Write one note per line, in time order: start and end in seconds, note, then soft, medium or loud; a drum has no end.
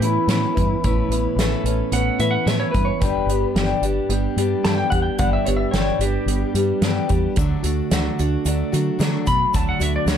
0.00 0.17 A2 medium
0.00 0.57 E3 medium
0.00 0.29 B3 medium
0.00 0.84 C#4 medium
0.00 0.27 C#4 soft
0.00 0.28 E4 medium
0.00 0.57 A4 medium
0.00 0.29 B4 medium
0.00 closed hi-hat medium
0.04 0.30 E4 medium
0.27 0.44 A2 medium
0.27 0.56 A3 medium
0.27 1.11 B3 medium
0.27 0.56 C#4 medium
0.27 0.55 E4 medium
0.27 1.36 E4 medium
0.27 0.53 B4 medium
0.27 snare loud
0.27 closed hi-hat medium
0.54 0.74 G2 medium
0.54 1.94 E3 medium
0.54 0.83 C#4 soft
0.54 0.84 E4 soft
0.54 0.83 B4 medium
0.54 kick medium
0.54 closed hi-hat medium
0.84 1.01 A1 medium
0.84 2.21 A2 medium
0.84 1.11 A3 medium
0.84 1.12 C#4 medium
0.84 1.12 E4 medium
0.84 1.10 B4 medium
0.84 kick medium
0.84 closed hi-hat medium
1.08 1.26 A1 medium
1.08 1.91 B3 medium
1.08 1.38 B4 medium
1.08 closed hi-hat medium
1.13 1.38 C#4 soft
1.13 1.39 E4 medium
1.36 1.53 A1 medium
1.36 1.66 A3 medium
1.36 1.66 C#4 medium
1.36 1.65 E4 medium
1.36 2.76 A4 medium
1.36 snare loud
1.36 closed hi-hat medium
1.41 1.64 B4 medium
1.64 1.81 A1 medium
1.64 1.92 C#4 soft
1.64 1.93 E4 soft
1.64 1.93 B4 medium
1.64 closed hi-hat medium
1.92 2.09 A1 medium
1.92 2.20 A3 medium
1.92 2.46 B3 medium
1.92 2.21 C#4 medium
1.92 2.20 E4 medium
1.92 2.19 B4 medium
1.92 2.20 F#5 medium
1.92 closed hi-hat medium
2.19 2.36 A2 medium
2.19 2.74 E3 medium
2.19 2.46 C#4 soft
2.19 2.47 E4 soft
2.19 2.47 B4 medium
2.19 2.34 E5 medium
2.19 closed hi-hat medium
2.31 2.46 F#5 medium
2.46 2.63 A2 medium
2.46 2.75 A3 medium
2.46 3.28 B3 medium
2.46 2.75 C#4 medium
2.46 2.74 E4 medium
2.46 2.73 B4 medium
2.46 2.59 E5 medium
2.46 snare loud
2.46 closed hi-hat medium
2.60 2.71 C#5 medium
2.71 2.91 G2 medium
2.71 3.02 E3 medium
2.71 3.02 E4 soft
2.71 2.86 B4 medium
2.71 3.02 B4 medium
2.71 kick medium
2.71 closed hi-hat medium
2.77 3.02 C#4 soft
2.85 3.00 C#5 medium
3.01 3.18 G1 medium
3.01 3.29 G2 medium
3.01 3.30 D3 medium
3.01 3.30 G3 medium
3.01 3.30 B3 medium
3.01 3.29 D4 medium
3.01 3.29 G4 medium
3.01 3.54 B4 medium
3.01 kick loud
3.01 closed hi-hat medium
3.26 3.44 G1 medium
3.26 3.56 G4 medium
3.26 closed hi-hat medium
3.31 3.56 G3 soft
3.31 3.56 B3 soft
3.31 3.56 D4 soft
3.55 3.72 G1 medium
3.55 3.84 G2 medium
3.55 3.84 D3 medium
3.55 3.84 G3 medium
3.55 3.84 B3 medium
3.55 3.84 D4 medium
3.55 3.83 G4 medium
3.55 snare loud
3.55 closed hi-hat medium
3.81 3.98 G1 medium
3.81 4.11 D4 medium
3.81 4.11 G4 medium
3.81 closed hi-hat medium
3.86 4.10 G3 soft
3.86 4.11 B3 medium
4.09 4.26 G1 medium
4.09 4.38 G3 medium
4.09 4.38 B3 medium
4.09 4.37 D4 medium
4.09 closed hi-hat medium
4.13 4.37 G4 medium
4.36 4.54 G2 medium
4.36 4.65 B3 medium
4.36 4.65 D4 medium
4.36 4.66 G4 medium
4.36 closed hi-hat medium
4.41 4.65 G3 soft
4.64 4.93 G2 medium
4.64 4.81 G2 medium
4.64 4.93 D3 medium
4.64 4.93 G3 medium
4.64 4.92 B3 medium
4.64 4.91 D4 medium
4.64 4.91 G4 medium
4.64 4.77 A5 medium
4.64 snare loud
4.64 closed hi-hat medium
4.78 4.90 G5 medium
4.90 5.09 E2 medium
4.90 5.18 G3 soft
4.90 5.19 B3 soft
4.90 5.19 D4 soft
4.90 5.20 G4 medium
4.90 5.02 F#5 loud
4.90 kick medium
4.90 closed hi-hat medium
5.02 5.18 G5 medium
5.18 5.36 G1 medium
5.18 5.47 G2 medium
5.18 5.47 D3 medium
5.18 5.47 G3 medium
5.18 5.46 B3 medium
5.18 5.46 D4 medium
5.18 5.45 G4 medium
5.18 5.33 F#5 medium
5.18 kick loud
5.18 closed hi-hat medium
5.33 5.47 E5 medium
5.46 5.64 G1 medium
5.46 5.73 G3 soft
5.46 5.74 B3 soft
5.46 5.74 D4 medium
5.46 5.74 G4 medium
5.46 5.56 C#5 medium
5.46 closed hi-hat medium
5.57 5.72 E5 medium
5.71 5.90 G1 medium
5.71 6.02 G2 medium
5.71 6.02 D3 medium
5.71 6.02 G3 medium
5.71 6.02 B3 medium
5.71 5.99 C#5 medium
5.71 snare loud
5.71 closed hi-hat medium
5.75 6.01 D4 medium
5.75 6.00 G4 medium
5.99 6.16 G1 medium
5.99 6.28 D4 soft
5.99 6.29 G4 soft
5.99 7.33 G4 medium
5.99 closed hi-hat medium
6.03 6.27 G3 soft
6.03 6.28 B3 soft
6.26 6.43 G1 medium
6.26 6.56 G3 medium
6.26 6.56 B3 medium
6.26 closed hi-hat medium
6.30 6.55 D4 medium
6.30 6.54 G4 medium
6.54 6.71 G2 medium
6.54 6.82 G3 soft
6.54 6.83 B3 soft
6.54 6.83 D4 medium
6.54 6.83 G4 medium
6.54 closed hi-hat medium
6.81 6.98 G2 medium
6.81 7.11 G2 medium
6.81 7.11 D3 medium
6.81 7.10 G3 medium
6.81 7.09 B3 medium
6.81 7.08 D4 medium
6.81 7.07 G4 medium
6.81 snare loud
6.81 closed hi-hat medium
7.08 7.26 E2 medium
7.08 7.37 G3 soft
7.08 7.37 B3 soft
7.08 7.36 D4 medium
7.08 7.37 G4 medium
7.08 kick medium
7.08 closed hi-hat medium
7.36 7.53 D2 medium
7.36 7.64 D3 medium
7.36 7.65 F#3 medium
7.36 7.65 A3 medium
7.36 7.63 D4 medium
7.36 7.61 F#4 medium
7.36 kick loud
7.36 closed hi-hat medium
7.36 shaker medium
7.63 7.80 D2 medium
7.63 7.91 A3 medium
7.63 7.92 D4 medium
7.63 7.91 F#4 medium
7.63 closed hi-hat medium
7.63 shaker medium
7.91 8.08 D2 medium
7.91 8.19 D3 medium
7.91 8.19 F#3 medium
7.91 8.20 A3 medium
7.91 8.20 D4 medium
7.91 8.18 F#4 medium
7.91 snare loud
7.91 closed hi-hat medium
7.91 shaker loud
8.19 8.36 D2 medium
8.19 8.45 A3 soft
8.19 8.46 D4 medium
8.19 8.46 F#4 medium
8.19 closed hi-hat medium
8.19 shaker medium
8.45 8.62 D2 medium
8.45 8.73 F#3 medium
8.45 8.73 A3 medium
8.45 8.73 D4 medium
8.45 8.71 F#4 medium
8.45 closed hi-hat medium
8.45 shaker medium
8.72 8.89 D3 medium
8.72 9.28 F#3 medium
8.72 8.99 A3 medium
8.72 8.99 D4 medium
8.72 9.00 F#4 medium
8.72 closed hi-hat medium
8.72 shaker medium
8.99 9.27 D3 medium
8.99 9.16 D3 medium
8.99 9.28 F#3 medium
8.99 9.28 A3 medium
8.99 9.27 D4 loud
8.99 9.26 F#4 loud
8.99 snare loud
8.99 closed hi-hat loud
8.99 shaker medium
9.27 9.44 B2 medium
9.27 10.18 F#3 medium
9.27 9.53 A3 soft
9.27 9.53 D4 soft
9.27 9.54 F#4 soft
9.27 9.54 B5 loud
9.27 kick medium
9.27 closed hi-hat medium
9.27 shaker medium
9.53 9.71 D2 medium
9.53 9.81 D3 medium
9.53 9.81 F#3 medium
9.53 9.81 A3 medium
9.53 9.80 D4 medium
9.53 9.78 F#4 medium
9.53 9.68 A5 medium
9.53 kick loud
9.53 closed hi-hat loud
9.53 shaker loud
9.69 9.82 F#5 medium
9.79 9.97 D2 medium
9.79 10.07 A3 soft
9.79 10.07 D4 medium
9.79 10.08 F#4 medium
9.79 9.95 E5 medium
9.79 closed hi-hat medium
9.79 shaker medium
9.96 10.08 D5 medium
10.06 10.18 D2 medium
10.06 10.18 D3 medium
10.06 10.18 F#3 medium
10.06 10.18 A3 medium
10.06 10.18 D4 medium
10.06 10.18 F#4 medium
10.06 10.18 C#5 medium
10.06 snare loud
10.06 closed hi-hat medium
10.06 shaker medium